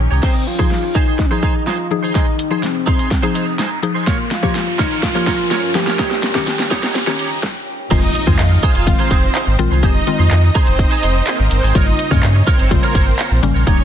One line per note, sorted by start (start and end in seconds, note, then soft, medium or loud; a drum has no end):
0.00 0.21 D#3 medium
0.00 0.21 C#4 medium
0.00 0.21 G4 medium
0.11 0.21 C2 medium
0.11 0.21 D#4 soft
0.11 0.23 G4 medium
0.11 0.24 C#5 medium
0.23 0.48 C4 loud
0.23 0.42 D#4 medium
0.23 0.35 G#4 medium
0.23 0.34 C5 medium
0.23 kick loud
0.23 snare medium
0.23 crash medium
0.23 riser medium
0.35 muted clean electric guitar stroke medium
0.47 0.96 F4 loud
0.47 muted clean electric guitar stroke soft
0.59 0.97 F3 medium
0.59 0.97 D#4 medium
0.59 0.70 D#4 medium
0.59 0.97 G#4 medium
0.59 0.70 G#4 medium
0.59 0.71 C5 medium
0.59 kick medium
0.71 muted clean electric guitar stroke soft
0.71 snare medium
0.83 muted clean electric guitar stroke soft
0.95 1.07 D#4 medium
0.95 1.18 D#4 loud
0.95 1.07 G#4 medium
0.95 1.06 C5 medium
0.95 kick loud
1.07 1.18 D#4 medium
1.07 1.18 G#4 medium
1.07 1.19 C5 medium
1.19 1.27 D#4 loud
1.19 muted clean electric guitar stroke soft
1.19 kick medium
1.19 snare medium
1.26 1.34 C#4 medium
1.31 1.63 F3 medium
1.31 1.63 D#4 medium
1.31 1.41 D#4 medium
1.31 1.68 D#4 loud
1.31 1.63 G#4 medium
1.31 1.42 G#4 medium
1.31 1.43 C5 medium
1.43 1.62 D#4 medium
1.43 1.55 G#4 medium
1.43 1.54 C5 medium
1.43 kick loud
1.55 muted clean electric guitar stroke soft
1.66 1.86 D#4 medium
1.66 1.92 F4 loud
1.66 1.79 G#4 medium
1.66 1.78 C5 loud
1.66 snare medium
1.79 muted clean electric guitar stroke soft
1.91 2.23 F3 medium
1.91 2.14 D#4 loud
1.91 2.23 D#4 medium
1.91 2.23 G#4 medium
1.91 muted clean electric guitar stroke soft
2.03 2.13 D#4 medium
2.03 2.14 G#4 medium
2.03 2.15 C5 medium
2.15 2.64 D#4 loud
2.15 2.34 D#4 medium
2.15 2.27 G#4 medium
2.15 2.26 C5 medium
2.15 kick loud
2.15 snare medium
2.15 closed hi-hat medium
2.27 muted clean electric guitar stroke medium
2.39 muted clean electric guitar stroke soft
2.39 closed hi-hat medium
2.51 2.89 F3 medium
2.51 2.89 D#4 medium
2.51 2.61 D#4 medium
2.51 2.89 G#4 medium
2.51 2.62 G#4 medium
2.51 2.63 C5 medium
2.63 3.59 C4 medium
2.63 muted clean electric guitar stroke soft
2.63 snare medium
2.63 closed hi-hat medium
2.75 muted clean electric guitar stroke soft
2.86 2.99 D#4 medium
2.86 2.98 G#4 medium
2.86 2.97 C5 loud
2.86 kick loud
2.86 closed hi-hat medium
2.98 3.09 D#4 medium
2.98 3.10 G#4 medium
2.98 3.10 C5 medium
2.98 closed hi-hat medium
3.11 muted clean electric guitar stroke medium
3.11 kick medium
3.11 snare medium
3.11 closed hi-hat medium
3.22 3.55 F3 medium
3.22 3.55 D#4 medium
3.22 3.33 D#4 medium
3.22 3.55 G#4 medium
3.22 3.34 G#4 medium
3.22 3.35 C5 medium
3.22 closed hi-hat soft
3.34 3.54 D#4 medium
3.34 3.46 G#4 medium
3.34 3.45 C5 loud
3.34 closed hi-hat medium
3.47 muted clean electric guitar stroke soft
3.58 3.78 D#4 medium
3.58 3.70 G#4 medium
3.58 3.69 C5 loud
3.58 snare medium
3.58 closed hi-hat medium
3.71 muted clean electric guitar stroke soft
3.82 4.07 F3 medium
3.82 4.07 D#4 medium
3.82 4.07 G#4 loud
3.82 muted clean electric guitar stroke soft
3.82 closed hi-hat medium
3.94 4.06 D#4 soft
3.94 4.07 G#4 medium
3.94 4.08 C5 medium
4.06 5.97 G2 medium
4.06 5.97 F3 medium
4.06 4.32 A#3 medium
4.06 5.97 C#4 medium
4.06 4.26 F4 medium
4.06 5.97 A#4 medium
4.06 4.19 A#4 medium
4.06 4.18 C#5 loud
4.06 kick loud
4.06 snare medium
4.06 closed hi-hat loud
4.19 muted clean electric guitar stroke medium
4.31 4.80 F4 loud
4.31 muted clean electric guitar stroke soft
4.31 snare medium
4.31 closed hi-hat medium
4.43 4.81 F3 medium
4.43 4.81 A#3 medium
4.43 4.54 F4 medium
4.43 4.81 G4 medium
4.43 4.54 A#4 medium
4.43 4.55 C#5 medium
4.43 kick loud
4.55 muted clean electric guitar stroke soft
4.55 snare medium
4.55 closed hi-hat loud
4.67 muted clean electric guitar stroke soft
4.79 5.03 D#4 medium
4.79 4.91 F4 medium
4.79 4.90 A#4 loud
4.79 4.89 C#5 loud
4.79 kick loud
4.79 snare medium
4.79 closed hi-hat medium
4.91 5.02 F4 medium
4.91 5.02 A#4 medium
4.91 5.03 C#5 medium
4.91 closed hi-hat medium
5.03 5.76 F4 loud
5.03 muted clean electric guitar stroke soft
5.03 kick loud
5.03 snare loud
5.03 closed hi-hat medium
5.15 5.47 F3 medium
5.15 5.47 A#3 medium
5.15 5.25 F4 medium
5.15 5.47 G4 medium
5.15 5.26 A#4 medium
5.15 5.27 C#5 medium
5.15 closed hi-hat soft
5.26 5.46 F4 medium
5.26 5.39 A#4 medium
5.26 5.37 C#5 medium
5.26 kick loud
5.26 snare loud
5.26 closed hi-hat medium
5.39 muted clean electric guitar stroke soft
5.50 5.70 F4 medium
5.50 5.63 A#4 medium
5.50 5.61 C#5 loud
5.50 snare loud
5.50 closed hi-hat medium
5.63 muted clean electric guitar stroke soft
5.74 5.99 F3 medium
5.74 5.99 A#3 medium
5.74 7.43 G4 loud
5.74 5.99 G4 medium
5.74 snare loud
5.74 closed hi-hat medium
5.87 5.98 F4 medium
5.87 5.99 A#4 medium
5.87 5.99 C#5 medium
5.87 snare loud
5.99 7.42 D#2 medium
5.99 7.42 C#3 medium
5.99 6.18 D#4 loud
5.99 7.42 G4 medium
5.99 6.11 G4 medium
5.99 6.09 C#5 loud
5.99 kick loud
5.99 snare loud
5.99 closed hi-hat loud
6.11 muted clean electric guitar stroke medium
6.11 snare loud
6.23 muted clean electric guitar stroke soft
6.23 snare loud
6.23 closed hi-hat medium
6.34 6.73 D#3 loud
6.34 6.73 C#4 medium
6.34 6.46 D#4 medium
6.34 6.73 G4 loud
6.34 6.46 G4 medium
6.34 6.47 C#5 medium
6.34 kick medium
6.34 snare loud
6.47 muted clean electric guitar stroke soft
6.47 snare loud
6.47 closed hi-hat loud
6.59 muted clean electric guitar stroke soft
6.59 snare loud
6.70 6.83 D#4 loud
6.70 6.82 G4 loud
6.70 6.81 C#5 loud
6.70 kick loud
6.70 snare loud
6.70 closed hi-hat medium
6.83 6.94 D#4 medium
6.83 6.94 G4 medium
6.83 6.95 C#5 medium
6.83 snare loud
6.83 closed hi-hat medium
6.95 muted clean electric guitar stroke soft
6.95 snare loud
6.95 closed hi-hat loud
7.06 7.39 D#3 medium
7.06 7.39 C#4 medium
7.06 7.17 D#4 medium
7.06 7.39 G4 medium
7.06 7.18 G4 medium
7.06 7.19 C#5 medium
7.06 snare loud
7.19 7.38 D#4 medium
7.19 7.31 G4 medium
7.19 7.30 C#5 medium
7.19 closed hi-hat medium
7.31 muted clean electric guitar stroke soft
7.43 kick loud
7.43 snare loud
7.90 8.10 F1 loud
7.90 8.10 D#3 medium
7.90 8.10 G#3 medium
7.90 8.10 C4 medium
7.90 8.10 D#4 medium
7.90 8.10 F4 medium
7.90 8.03 G#4 medium
7.90 8.02 C5 medium
7.90 kick loud
7.90 closed hi-hat loud
7.90 crash loud
7.90 impact medium
8.03 muted clean electric guitar stroke medium
8.15 muted clean electric guitar stroke soft
8.15 closed hi-hat medium
8.27 8.37 F2 loud
8.27 8.59 D#3 medium
8.27 8.59 G#3 medium
8.27 8.59 C4 medium
8.27 8.38 D#4 medium
8.27 8.59 F4 medium
8.27 8.38 G#4 medium
8.27 8.39 C5 medium
8.27 kick loud
8.39 8.58 F2 loud
8.39 muted clean electric guitar stroke soft
8.39 clap loud
8.39 closed hi-hat loud
8.51 muted clean electric guitar stroke medium
8.63 8.75 D#4 medium
8.63 8.74 G#4 medium
8.63 8.73 C5 medium
8.63 kick loud
8.63 closed hi-hat medium
8.75 8.94 F1 medium
8.75 8.85 D#4 medium
8.75 8.86 G#4 medium
8.75 8.87 C5 medium
8.75 closed hi-hat medium
8.87 9.25 D#3 medium
8.87 9.25 G#3 medium
8.87 9.25 C4 medium
8.87 9.25 F4 medium
8.87 muted clean electric guitar stroke soft
8.87 kick loud
8.87 closed hi-hat loud
8.99 9.09 D#4 medium
8.99 9.10 G#4 medium
8.99 9.11 C5 medium
8.99 closed hi-hat soft
9.11 9.30 F1 medium
9.11 9.30 D#4 medium
9.11 9.23 G#4 medium
9.11 9.22 C5 medium
9.11 kick loud
9.11 closed hi-hat medium
9.23 muted clean electric guitar stroke soft
9.35 9.54 D#4 medium
9.35 9.47 G#4 medium
9.35 9.46 C5 loud
9.35 clap loud
9.35 closed hi-hat medium
9.47 9.56 G#1 medium
9.47 muted clean electric guitar stroke medium
9.59 9.68 A#1 medium
9.59 9.72 D#3 loud
9.59 9.72 G#3 loud
9.59 9.72 C4 loud
9.59 9.72 F4 loud
9.59 muted clean electric guitar stroke soft
9.59 closed hi-hat medium
9.71 9.85 C2 medium
9.71 9.81 D#4 medium
9.71 9.82 G#4 medium
9.71 9.83 C5 medium
9.83 10.02 F1 loud
9.83 9.96 D#3 medium
9.83 9.96 G#3 medium
9.83 9.96 C4 medium
9.83 10.02 D#4 medium
9.83 9.96 G4 medium
9.83 9.95 G#4 medium
9.83 9.94 C5 medium
9.83 kick loud
9.83 closed hi-hat loud
9.95 muted clean electric guitar stroke soft
10.07 10.58 D#3 medium
10.07 10.58 G#3 medium
10.07 10.58 C4 medium
10.07 10.58 F4 loud
10.07 muted clean electric guitar stroke soft
10.07 closed hi-hat medium
10.19 10.28 F2 loud
10.19 10.30 D#4 medium
10.19 10.30 G#4 medium
10.19 10.31 C5 medium
10.31 10.50 F2 loud
10.31 muted clean electric guitar stroke soft
10.31 clap loud
10.31 closed hi-hat loud
10.43 muted clean electric guitar stroke medium
10.55 10.67 D#4 loud
10.55 10.66 G#4 loud
10.55 10.65 C5 loud
10.55 kick loud
10.55 closed hi-hat medium
10.67 10.86 F1 medium
10.67 10.78 D#4 medium
10.67 10.78 G#4 medium
10.67 10.79 C5 medium
10.67 closed hi-hat medium
10.79 kick loud
10.79 closed hi-hat medium
10.91 11.01 D#4 medium
10.91 11.02 G#4 medium
10.91 11.03 C5 medium
10.91 closed hi-hat soft
11.03 11.22 F1 medium
11.03 11.22 D#4 medium
11.03 11.15 G#4 medium
11.03 11.13 C5 medium
11.03 closed hi-hat medium
11.15 muted clean electric guitar stroke medium
11.26 11.46 D#4 medium
11.26 11.39 G#4 medium
11.26 11.37 C5 loud
11.26 clap loud
11.26 closed hi-hat medium
11.39 11.49 G#1 medium
11.39 muted clean electric guitar stroke soft
11.51 11.61 G1 loud
11.51 muted clean electric guitar stroke soft
11.51 closed hi-hat medium
11.63 11.73 G#1 medium
11.63 11.74 D#4 medium
11.63 11.75 G#4 medium
11.63 11.76 C5 medium
11.75 11.94 G1 loud
11.75 11.94 C#3 medium
11.75 11.94 G3 medium
11.75 11.94 A#3 medium
11.75 11.94 F4 medium
11.75 11.87 A#4 medium
11.75 11.86 C#5 loud
11.75 kick loud
11.75 closed hi-hat loud
11.87 muted clean electric guitar stroke soft
11.99 muted clean electric guitar stroke soft
11.99 closed hi-hat medium
12.11 12.21 G2 loud
12.11 12.43 C#3 medium
12.11 12.43 G3 medium
12.11 12.43 A#3 medium
12.11 12.43 C#4 medium
12.11 12.22 F4 medium
12.11 12.22 A#4 medium
12.11 12.23 C#5 medium
12.11 kick loud
12.23 12.42 G2 loud
12.23 muted clean electric guitar stroke medium
12.23 clap loud
12.23 closed hi-hat loud
12.35 muted clean electric guitar stroke medium
12.47 12.59 F4 loud
12.47 12.58 A#4 loud
12.47 12.58 C#5 loud
12.47 kick loud
12.47 closed hi-hat medium
12.59 12.78 G1 medium
12.59 12.70 F4 medium
12.59 12.70 A#4 medium
12.59 12.71 C#5 medium
12.59 closed hi-hat medium
12.71 13.09 C#3 medium
12.71 13.09 G3 medium
12.71 13.09 A#3 medium
12.71 13.10 F4 medium
12.71 kick loud
12.71 closed hi-hat loud
12.83 12.93 F4 medium
12.83 12.94 A#4 medium
12.83 12.95 C#5 medium
12.83 closed hi-hat medium
12.95 13.14 G1 medium
12.95 13.14 F4 medium
12.95 13.07 A#4 medium
12.95 13.05 C#5 loud
12.95 kick loud
12.95 closed hi-hat medium
13.07 muted clean electric guitar stroke medium
13.19 13.38 F4 medium
13.19 13.31 A#4 medium
13.19 13.30 C#5 loud
13.19 clap loud
13.19 closed hi-hat medium
13.31 13.40 A#1 loud
13.31 muted clean electric guitar stroke soft
13.43 13.52 G#1 loud
13.43 13.56 C#3 loud
13.43 13.56 G3 loud
13.43 13.56 A#3 loud
13.43 13.56 C#4 loud
13.43 muted clean electric guitar stroke soft
13.43 closed hi-hat medium
13.54 13.64 A#1 medium
13.54 13.66 F4 medium
13.54 13.67 A#4 medium
13.54 13.67 C#5 medium
13.66 13.84 D#1 loud
13.66 13.80 C#3 medium
13.66 13.80 G3 medium
13.66 13.80 A#3 medium
13.66 13.84 D#4 medium
13.66 13.80 D#4 medium
13.66 13.79 G4 loud
13.66 13.77 C#5 loud
13.66 kick loud
13.66 closed hi-hat loud
13.79 muted clean electric guitar stroke soft